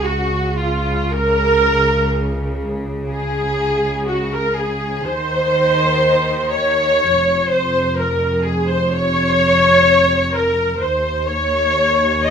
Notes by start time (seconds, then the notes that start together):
Already playing: C#2 C#3
0.03 F#4
0.57 F4
1.11 A#4
3.10 G#4
4.08 F#4
4.32 A#4
4.57 G#4
5.06 D#2 D#3 C5
6.52 C#5
7.01 F1 F2
7.49 C5
7.97 A#4
8.44 G#4
8.67 C5
8.91 C#5
10.32 A#4
10.80 D#2 C5
11.28 C#5
12.25 D#5